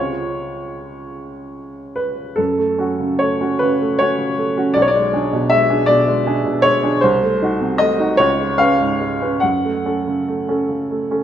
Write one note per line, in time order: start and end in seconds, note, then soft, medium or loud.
0.00 2.32 C#2 soft
0.00 2.33 G#3 soft
0.00 2.33 C#4 soft
0.00 2.34 F4 soft
0.00 1.15 C#5 medium
1.96 2.37 B4 medium
2.36 4.72 F#2 soft
2.36 3.20 A4 medium
2.58 2.92 A3 soft
2.78 2.98 C#4 soft
2.78 2.98 F#4 soft
3.00 3.33 C#3 soft
3.19 3.53 A3 soft
3.19 3.60 C#5 medium
3.41 3.59 C#4 soft
3.41 3.59 F#4 soft
3.59 3.92 C#3 soft
3.59 3.99 B4 medium
3.81 4.11 A3 soft
3.99 4.17 C#4 soft
3.99 4.18 F#4 soft
3.99 4.75 C#5 medium
4.18 4.49 C#3 soft
4.38 4.68 A3 soft
4.57 4.74 C#4 soft
4.57 4.74 F#4 soft
4.74 6.97 B1 soft
4.74 4.82 D5 medium
4.82 4.89 C#5 medium
4.88 5.50 D5 medium
4.95 5.25 G#3 soft
5.13 5.30 D4 soft
5.13 5.30 G#4 soft
5.33 5.62 B2 soft
5.50 5.80 G#3 soft
5.50 5.87 E5 medium
5.69 5.86 D4 soft
5.69 5.86 G#4 soft
5.86 6.18 B2 soft
5.86 6.62 D5 medium
6.08 6.37 G#3 soft
6.27 6.43 D4 soft
6.27 6.43 G#4 soft
6.45 6.74 B2 soft
6.62 6.94 G#3 soft
6.62 7.01 C#5 medium
6.83 7.00 D4 soft
6.83 7.00 G#4 soft
7.01 8.16 C2 medium
7.01 7.79 C5 medium
7.23 7.52 A3 soft
7.42 7.58 D#4 soft
7.42 7.59 F#4 soft
7.61 7.91 C3 soft
7.78 8.11 A3 soft
7.78 8.19 D#5 medium
8.00 8.17 D#4 soft
8.00 8.18 F#4 soft
8.17 9.39 C#2 medium
8.17 8.59 C#5 medium
8.40 8.72 G#3 soft
8.58 8.78 C#4 soft
8.58 8.78 B4 soft
8.58 9.42 F5 medium
8.80 9.13 G#2 soft
9.01 9.34 G#3 soft
9.22 9.41 C#4 soft
9.22 9.41 B4 soft
9.40 11.23 F#2 soft
9.40 11.23 F#5 medium
9.64 9.98 A3 soft
9.86 10.05 C#4 soft
9.86 10.05 A4 soft
10.07 10.41 C#3 soft
10.28 10.62 A3 soft
10.49 10.68 C#4 soft
10.49 10.68 A4 soft
10.69 11.03 C#3 soft
10.91 11.23 A3 soft
11.11 11.23 C#4 soft
11.11 11.23 A4 soft